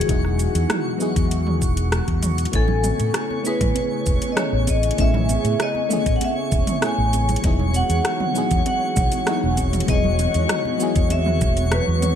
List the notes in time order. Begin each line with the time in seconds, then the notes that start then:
Already playing: E3 F#3 G#3 B3 D#4 E4 F#4 G#4 F#5 C#6
0.01 closed hi-hat
0.07 E1 F#3 B3 D#4 E4, kick, closed hi-hat, cabasa
0.11 G#4
0.25 cross-stick
0.39 closed hi-hat, cabasa
0.55 E2, closed hi-hat, cabasa
0.70 cross-stick, closed hi-hat, mid tom, cabasa
0.98 F#3 B3 D#4 E4, cabasa
1.02 G#4
1.16 E2, kick, closed hi-hat, cabasa
1.31 closed hi-hat, cabasa
1.47 mid tom
1.62 E1, kick, cabasa
1.77 closed hi-hat, cabasa
1.92 cross-stick, closed hi-hat, cabasa
2.08 E2, kick, closed hi-hat
2.23 closed hi-hat, mid tom, cabasa
2.38 closed hi-hat, cabasa
2.45 closed hi-hat
2.52 A1 C#3 A3 B3 C#4 E4 A4 C#5 G#5, kick, closed hi-hat, cabasa
2.56 G#5
2.68 low conga
2.84 closed hi-hat, mid tom, high conga, cabasa
3.00 A2, closed hi-hat, cabasa
3.14 cross-stick, closed hi-hat, cabasa
3.30 high conga
3.44 A3 B3 C#4 E4 B4, cabasa
3.48 G#4
3.61 A2, kick, closed hi-hat, mid tom, cabasa
3.75 closed hi-hat, high conga, cabasa
4.06 E1, kick, cabasa
4.22 closed hi-hat, high conga, cabasa
4.32 A3 D#5
4.37 B3 C#4 E4 G#4 C#5, cross-stick, closed hi-hat, mid tom, cabasa
4.53 A1
4.67 D#5, kick, closed hi-hat, high conga, cabasa
4.83 closed hi-hat, cabasa
4.91 closed hi-hat
4.97 A1 A3 B3 C#4 E4 E5, kick, closed hi-hat, cabasa
5.01 G#4
5.14 mid tom, low conga
5.29 closed hi-hat, high conga, cabasa
5.45 A2, closed hi-hat, cabasa
5.60 D#5, cross-stick, closed hi-hat, cabasa
5.75 high conga
5.89 A3 B3 C#4 E4, mid tom, cabasa
5.93 G#4
6.06 A2, kick, closed hi-hat, cabasa
6.16 F#5
6.21 E5, closed hi-hat, high conga, cabasa
6.52 E1, kick, cabasa
6.67 closed hi-hat, mid tom, high conga, cabasa
6.81 A3 B3 C#4 E4 G#4, cross-stick, closed hi-hat, cabasa
6.86 G#5
6.98 A1
7.13 closed hi-hat, high conga, cabasa
7.29 closed hi-hat, low conga, cabasa
7.36 closed hi-hat
7.42 E1 E3 F#3 G#3 B3 D#4 E4 F#4 F#5, kick, closed hi-hat, mid tom, cabasa
7.47 G#4
7.59 low conga
7.74 F#5, closed hi-hat, high conga, cabasa
7.90 E2, closed hi-hat, cabasa
8.05 cross-stick, closed hi-hat, cabasa
8.20 mid tom, high conga
8.33 F#3 B3 D#4 E4, cabasa
8.38 G#4
8.51 E2, kick, closed hi-hat, cabasa
8.66 F#5, closed hi-hat, high conga, cabasa
8.96 B1, kick, mid tom, cabasa
9.12 closed hi-hat, high conga, cabasa
9.27 F#3 B3 D#4 E4 G#4, cross-stick, closed hi-hat, cabasa
9.44 E1
9.57 kick, closed hi-hat, high conga, cabasa
9.73 closed hi-hat, mid tom, cabasa
9.80 closed hi-hat
9.86 E1 F#3 B3 D#4 E4 D#5, kick, closed hi-hat, cabasa
9.91 G#4
10.04 low conga
10.19 closed hi-hat, high conga, cabasa
10.34 E2, closed hi-hat, cabasa
10.49 cross-stick, closed hi-hat, mid tom, cabasa
10.65 high conga
10.78 F#3 B3 E4 F#4, cabasa
10.83 G#4
10.96 E2, kick, closed hi-hat, cabasa
11.10 E5, closed hi-hat, high conga, cabasa
11.26 mid tom
11.41 E1, kick, low conga, cabasa
11.57 closed hi-hat, high conga, cabasa
11.72 B4, cross-stick, closed hi-hat, cabasa
11.88 E2
12.02 closed hi-hat, mid tom, high conga, cabasa